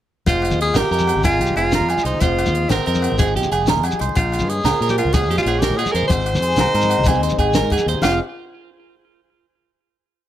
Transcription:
0.26 F1 F2 G#3 F4 C5, kick, closed hi-hat, muted conga, low conga, low agogo, shekere
0.42 closed hi-hat, low agogo, shekere
0.51 D#2, high conga, low conga, shekere
0.60 F4 G#4, closed hi-hat
0.69 low conga
0.74 G#1 F3 G4 A#4, muted steel-string acoustic guitar stroke, snare, closed hi-hat, muted conga, low agogo, shekere
0.84 low conga
0.91 F2 G#3 A#4, closed hi-hat
0.99 high conga, low conga, shekere
1.07 C4, closed hi-hat, low agogo
1.15 G#1, low conga
1.23 G#3 F4 G#4, muted steel-string acoustic guitar stroke, kick, closed hi-hat, muted conga, low agogo, shekere
1.31 shekere
1.39 C2 G4, closed hi-hat
1.46 shekere
1.50 high conga, low conga
1.56 F1 C4 F4 G#4, closed hi-hat, low conga, low agogo
1.66 low conga
1.72 F3 A#4, muted steel-string acoustic guitar stroke, snare, closed hi-hat, muted conga, low conga, shekere
1.80 F2, low conga
1.89 G#3 G#4, closed hi-hat, low agogo, shekere
1.98 high conga, shekere
2.04 C2 D#4 C5, closed hi-hat, low conga, shekere
2.14 low conga
2.20 F1 F2 G#3 F4 C5, kick, closed hi-hat, muted conga, low conga, low agogo, shekere
2.38 closed hi-hat, low agogo, shekere
2.46 D#2, high conga, low conga, shekere
2.54 C4, closed hi-hat, low conga
2.63 low conga
2.69 G#1 F3 C4 A#4, snare, closed hi-hat, muted conga, low agogo, shekere
2.78 low conga
2.86 F2 G#3 A#4, closed hi-hat
2.95 high conga, low conga, shekere
3.02 closed hi-hat, low agogo
3.11 G#1, low conga
3.18 F2 G#3 G#4, kick, closed hi-hat, muted conga, low agogo, shekere
3.27 shekere
3.36 C2 G4, closed hi-hat
3.43 high conga, low conga, shekere
3.51 F1 G#4, closed hi-hat, low agogo
3.61 low conga
3.67 F2 A#4, snare, closed hi-hat, muted conga, low conga, shekere
3.76 F2, low conga
3.83 G2 G#4, closed hi-hat, low agogo, shekere
3.91 high conga, low conga, shekere
3.99 C2 G#2 C5, closed hi-hat, low conga, shekere
4.09 low conga
4.15 A#1 A#2 G#3 F4 C5, kick, closed hi-hat, muted conga, low conga, low agogo, shekere
4.32 closed hi-hat, low agogo, shekere
4.39 G2, high conga, low conga, shekere
4.49 C#4 G#4, closed hi-hat
4.58 low conga
4.64 C#2 F3 C#4 A#4, snare, closed hi-hat, muted conga, low agogo, shekere
4.74 low conga
4.80 A#2 A#4, closed hi-hat
4.89 G4, high conga, low conga, shekere
4.98 C#4 F4, closed hi-hat, low agogo
5.05 C#2, low conga
5.13 A#2 G#3 G#4, kick, closed hi-hat, muted conga, low agogo, shekere
5.22 shekere
5.30 F2 G4, closed hi-hat
5.38 F4, high conga, low conga, shekere
5.43 A#1 C#4 F4, closed hi-hat
5.47 G#4, low agogo
5.55 G4, low conga
5.62 F3 C#4 A#4, snare, closed hi-hat, muted conga, low conga, shekere
5.70 A#2, low conga
5.77 G#3 G#4, closed hi-hat, low agogo, shekere
5.86 high conga, low conga, shekere
5.92 F2 A#4 C5, closed hi-hat, low conga, shekere
6.03 low conga
6.08 G#1 G#2 C4 C5, kick, closed hi-hat, muted conga, low conga, low agogo, shekere
6.20 shekere
6.26 closed hi-hat, low conga, low agogo
6.34 F2, high conga, low conga, shekere
6.42 G#4, closed hi-hat, low conga
6.51 shekere
6.56 C2 D#3 D#4, snare, closed hi-hat, muted conga, low agogo, shekere
6.60 A#4
6.65 low conga, shekere
6.74 G#2 C4 A#4, closed hi-hat
6.81 high conga, shekere
6.90 D#4, closed hi-hat, low agogo, shekere
6.98 C2, low conga
7.04 G#2 C4, kick, closed hi-hat, low agogo, shekere
7.08 G#4, muted conga
7.14 low conga, shekere
7.22 D#2 C5, closed hi-hat, low conga
7.29 high conga, low conga, shekere
7.38 G#1 G#4, kick, closed hi-hat, low agogo
7.49 low conga
7.54 A#2 A#4, snare, closed hi-hat, muted conga, low conga, shekere
7.62 G#2
7.70 G#2 G#4, kick, closed hi-hat, low conga, low agogo, shekere
7.78 high conga, shekere
7.86 D#2 G2 C5, closed hi-hat, low conga
7.95 low conga
8.02 F1 F2 F3 G#3 F4 F5, snare, crash, muted conga, low agogo, shekere
8.06 C4 G#4

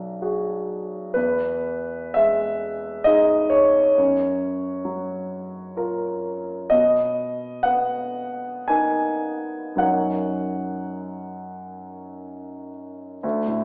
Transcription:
Already playing: B1 F#3 D5
0.22 F#4 G#4
1.14 E2 B4
2.14 G#3 E5
3.04 D#4 G#4 D#5
3.50 C#5
3.98 F#2
4.85 F#3
5.76 F4 A#4
6.70 B2 D#5
7.63 B3 F#5
8.68 D#4 A#4 G#5
9.75 F#2 F#3 C#4 D#4 A#4 F#5
13.23 D2
13.48 A2

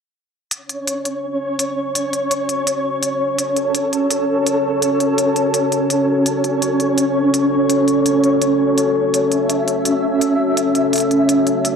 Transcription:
0.50 C#4 F#4 C#5, closed hi-hat
0.69 closed hi-hat
0.87 closed hi-hat
1.05 closed hi-hat
1.59 closed hi-hat
1.95 closed hi-hat
2.13 closed hi-hat
2.31 closed hi-hat
2.49 closed hi-hat
2.67 closed hi-hat
3.03 closed hi-hat
3.38 A4, closed hi-hat
3.56 closed hi-hat
3.75 closed hi-hat
3.93 closed hi-hat
4.10 closed hi-hat
4.46 closed hi-hat
4.82 closed hi-hat
5.00 closed hi-hat
5.18 closed hi-hat
5.36 closed hi-hat
5.54 closed hi-hat
5.72 closed hi-hat
5.90 closed hi-hat
6.26 A4 C#5, closed hi-hat
6.44 closed hi-hat
6.62 closed hi-hat
6.80 closed hi-hat
6.98 closed hi-hat
7.34 closed hi-hat
7.70 closed hi-hat
7.88 closed hi-hat
8.06 closed hi-hat
8.24 closed hi-hat
8.42 closed hi-hat
8.78 closed hi-hat
9.13 E5, closed hi-hat
9.32 closed hi-hat
9.50 closed hi-hat
9.68 closed hi-hat
9.85 closed hi-hat
10.21 closed hi-hat
10.57 closed hi-hat
10.75 closed hi-hat
10.93 closed hi-hat
10.96 closed hi-hat
10.98 closed hi-hat
11.00 closed hi-hat
11.11 closed hi-hat
11.29 closed hi-hat
11.47 closed hi-hat
11.65 closed hi-hat

